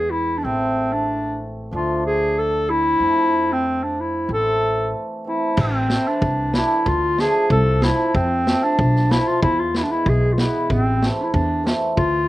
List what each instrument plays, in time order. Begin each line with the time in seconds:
Already playing: upright bass E2, hammered dulcimer E3 G#3 B3 D4, clarinet G#4
0.11 clarinet E4
0.38 clarinet D4
0.42 upright bass A1, hammered dulcimer E3 A3 C4, clarinet C4
0.93 clarinet D4
1.71 upright bass D2, hammered dulcimer F3 A3 D4, clarinet F4
2.06 clarinet G#4
2.38 clarinet A4
2.70 clarinet E4
2.99 upright bass F2, hammered dulcimer F3 A3
3.03 hammered dulcimer C4
3.52 clarinet C4
3.83 clarinet D4
4.00 clarinet E4
4.28 upright bass A1, hammered dulcimer E3 A3 C4
4.33 clarinet A4
5.25 hammered dulcimer E3 A3 C4, clarinet E4
5.57 upright bass A1, clarinet C4, kick, crash
5.89 hammered dulcimer E3 A3 C4, snare
6.08 clarinet D4
6.21 upright bass C2, kick
6.53 hammered dulcimer E3 A3 D4, clarinet E4, snare
6.86 upright bass D2, clarinet F4, kick
7.17 hammered dulcimer F3 A3 D4, clarinet G#4, snare
7.50 upright bass C2, clarinet A4, kick
7.81 hammered dulcimer F3 A3 C4, clarinet E4, snare
8.15 upright bass F2, clarinet C4, kick
8.46 hammered dulcimer F3 A3 C4, snare
8.64 clarinet D4
8.79 upright bass B1, kick
8.96 snare
9.09 hammered dulcimer F3 A3 C4, clarinet E4, snare
9.27 clarinet F4
9.42 upright bass E2, clarinet E4, kick
9.59 clarinet F4
9.74 hammered dulcimer E3 G#3 B3, clarinet E4, snare
9.83 clarinet D4
9.91 clarinet E4
10.06 upright bass B1, clarinet G#4, kick
10.33 clarinet F4
10.38 hammered dulcimer E3 G#3 B3, clarinet E4, snare
10.70 upright bass A1, clarinet C4, kick
11.02 hammered dulcimer E3 A3 C4, snare
11.20 clarinet D4 E4
11.33 upright bass E2, clarinet D4, kick
11.63 hammered dulcimer E3 A3 C4, snare
11.97 upright bass D2, clarinet F4, kick